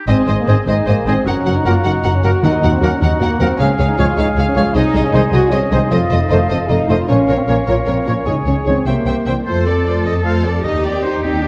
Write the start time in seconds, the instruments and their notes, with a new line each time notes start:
0.07 double bass section G#1, cello section G#2, french horn section C4, clarinet G#4, violin section C5 D#5, viola section C5, oboe D#5, flute G#5
0.28 double bass section G#1, cello section G#2, violin section C5 D#5, viola section C5
0.39 french horn section A#3
0.47 double bass section G#1, cello section G#2, trombone section D#3 C4, french horn section C4, trumpet G#4, violin section C5 D#5, viola section C5
0.67 double bass section G#1, cello section G#2, french horn section D#4, clarinet G#4, viola section C5, violin section C5 D#5, oboe D#5, flute G#5
0.86 double bass section G#1, cello section G#2, french horn section A#3, viola section C5, violin section C5 D#5
1.06 double bass section G#1, cello section G#2, trombone section D#3 C4, french horn section C4, trumpet G#4, viola section C5, violin section C5 D#5
1.25 double bass section F#1, cello section F#2, french horn section C#4, clarinet F#4, viola section F#4, violin section A#4 F#5, oboe F#5, flute A#5
1.45 double bass section F#1, cello section F#2, viola section F#4, violin section A#4 F#5
1.56 french horn section D#4
1.65 double bass section F#1, cello section F#2, trombone section F#3 A#3, french horn section F4, viola section F#4, trumpet A#4, violin section A#4 F#5
1.84 double bass section F#1, cello section F#2, french horn section D#4, viola section F#4, violin section A#4 F#5
2.03 double bass section F#1, cello section F#2, viola section F#4, violin section A#4 F#5
2.14 french horn section C#4
2.23 double bass section F#1, cello section F#2, trombone section F#3 A#3, french horn section F#4, viola section F#4, trumpet A#4, violin section A#4 F#5
2.43 cello section D#2, double bass section D#2, timpani D#3, french horn section D#4, viola section F#4, clarinet F#4, violin section A#4 F#5, oboe F#5, flute A#5
2.63 cello section D#2, double bass section D#2, viola section F#4, violin section A#4 F#5
2.71 french horn section C4
2.80 cello section D#2, double bass section D#2, trombone section F#3 A#3, french horn section C#4, viola section F#4, trumpet A#4, violin section A#4 F#5
3.00 cello section D#2, double bass section D#2, french horn section D#4, viola section F#4, clarinet F#4, violin section A#4 F#5, oboe F#5, flute A#5
3.21 double bass section D#2, cello section D#2, french horn section A#3, viola section F#4, violin section A#4 F#5
3.39 double bass section D#2, cello section D#2, trombone section F#3 A#3, french horn section C4, viola section F#4, violin section A#4 F#5, trumpet A#4
3.57 double bass section C#2, cello section C#2, french horn section C#4, clarinet G#4, viola section G#4, violin section C#5 F5, oboe F5, flute G#5
3.78 double bass section C#2, cello section C#2, viola section G#4, violin section C#5 F5
3.87 french horn section D#4
3.97 cello section C#2, double bass section C#2, trombone section F3 G#3, french horn section F4, viola section G#4, violin section C#5 F5, trumpet C#5
4.16 cello section C#2, double bass section C#2, french horn section D#4, viola section G#4, violin section C#5 F5
4.36 cello section C#2, double bass section C#2, viola section G#4, violin section C#5 F5
4.47 french horn section C#4
4.55 cello section C#2, double bass section C#2, trombone section F3 G#3, french horn section F4, viola section G#4, violin section C#5 F5, trumpet C#5
4.74 cello section C2, double bass section C2, french horn section D#4, viola section G#4, clarinet G#4, violin section C5 D#5, oboe D#5, flute G#5
4.94 double bass section C2, cello section C2, viola section G#4, violin section C5 D#5
5.04 french horn section C#4
5.12 cello section C2, double bass section C2, trombone section D#3 G#3, french horn section D#4, viola section G#4, violin section C5 D#5, trumpet C5
5.30 cello section C2, double bass section C2, french horn section F#4, viola section G#4, violin section C5 D#5
5.49 cello section C2, double bass section C2, french horn section C#4, viola section G#4, violin section C5 D#5
5.71 cello section C2, double bass section C2, trombone section D#3 G#3, french horn section D#4, viola section G#4, trumpet C5, violin section C5 D#5
5.91 double bass section F1, cello section F2, french horn section F4, viola section A4, clarinet A4, violin section C5 D#5, flute F5
6.10 double bass section F1, cello section F2, viola section A4, violin section C5 D#5
6.20 french horn section D#4
6.30 double bass section F1, cello section F2, trombone section D#3 A3, french horn section F4, viola section A4, violin section C5 D#5, trumpet C5
6.49 double bass section F1, cello section F2, french horn section A4, viola section A4, violin section C5 D#5
6.68 double bass section F1, cello section F2, french horn section D#4, viola section A4, violin section C5 D#5
6.87 double bass section F1, cello section F2, trombone section D#3 A3, french horn section F4, viola section A4, violin section C5 D#5, trumpet C5
7.08 double bass section A#1, cello section A#2, french horn section C#4, clarinet A#4, viola section A#4, oboe C#5, violin section C#5
7.28 double bass section A#1, cello section A#2, viola section A#4, violin section C#5
7.36 french horn section C4
7.47 double bass section A#1, cello section A#2, trombone section F3 A#3, french horn section C#4, viola section A#4, violin section C#5, trumpet C#5
7.67 double bass section A#1, cello section A#2, french horn section F4, viola section A#4, violin section C#5
7.86 double bass section A#1, cello section A#2, french horn section C4, viola section A#4, violin section C#5
8.05 double bass section A#1, cello section A#2, trombone section F3 A#3, french horn section C#4, viola section A#4, trumpet C#5, violin section C#5
8.26 double bass section C#2, cello section C#3, french horn section D#4, viola section G#4, clarinet G#4, violin section C#5, flute G#5
8.46 double bass section C#2, cello section C#3, french horn section C#4, viola section G#4, violin section C#5
8.65 double bass section C#2, cello section C#3, trombone section D#3 G#3, french horn section C4, viola section G#4, violin section C#5, trumpet C#5
8.85 double bass section C2, cello section C3, french horn section A#3, clarinet G4, oboe C5, viola section C5, violin section E5 G5, flute E5
9.05 double bass section C2, cello section C3, viola section C5, violin section E5 G5
9.26 double bass section C2, cello section C3, trombone section E3 G3, viola section C5, trumpet C5, violin section E5 G5
9.46 double bass section F2, viola section A3 F4, cello section A4, oboe C5, violin section C5
9.66 viola section C4 A4, violin section A4 D5, oboe D5
9.86 viola section A3 F4, violin section C5 D5, oboe D5
10.05 double bass section F2, viola section C4 A4, violin section A4 D#5, oboe D#5
10.25 viola section A3 F4, violin section C5 F5, oboe F5
10.45 viola section C4 A4, violin section A4 D5, oboe D5
10.64 double bass section D#2, viola section D#4 G4, violin section D#4 D#5, cello section G4, oboe D#5
10.84 viola section C4 D#4, violin section G4 D5, oboe D5
11.02 viola section D#4 G4, violin section D#4 C5, oboe C5
11.22 double bass section D#2, viola section C4 D#4, cello section D#4, oboe G4, violin section G4
11.42 cello section D4, viola section D#4 G4, violin section D#4